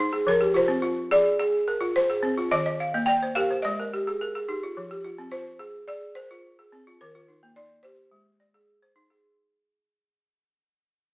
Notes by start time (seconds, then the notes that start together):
Already playing: C5
0.00 D#4
0.13 G#4
0.27 F3 A#4
0.41 G4
0.54 F4 C5
0.68 C4
0.82 F4
1.11 G#4 D5
1.39 G#4
1.68 A#4
1.81 F4
1.96 C5
2.10 G#4
2.23 C4
2.38 F4
2.51 D#3 D5 D#5
2.66 D#5
2.80 F5
2.94 A#3 D#5
3.06 D5 G5
3.23 C5
3.35 G4 A#4 F5
3.51 C5
3.62 G#3 D5 D#5
3.80 A#4
3.94 G4
4.07 G#4
4.21 A#4
4.35 G#4
4.49 D#4 G4
4.63 F4
4.77 F3
4.91 G4
5.05 F4
5.18 C4
5.32 F4 C5
5.59 G#4
5.88 G#4 D5
6.15 A#4 C5
6.31 F4
6.59 G#4
6.72 C4
6.87 F4
7.01 D#3 A#4
7.15 F4
7.28 D#4
7.43 A#3
7.56 D#4 D5
7.83 G4 C5
8.11 G#3
8.40 D5
8.54 G#4
8.82 C5
8.96 D#4
9.10 G#4